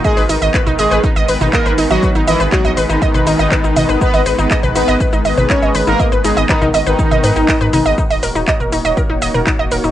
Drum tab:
HH |-oo---o---o---o-|--o---o---o---o-|-oo---o---o---o-|--o---o---o-o-o-|
SH |xxxxxxxxxxxxxxxx|xxxxxxxxxxxxxxxx|xxxxxxxxxxxxxxxx|xxxxxxxxxxxxxxxx|
CP |----x-------x---|----x-------x---|----x-------x---|----x-------x---|
T2 |-----o-----o----|---------o----o-|-----o-----o----|-----o---o----o-|
BD |o---o---o---o---|o---o---o---o---|o---o---o---o---|o---o---o---o---|

HH |-oo---o---o---o-|
SH |xxxxxxxxx-xxx-xx|
CP |----x-------x---|
T2 |-----o-----o----|
BD |o---o---o---o---|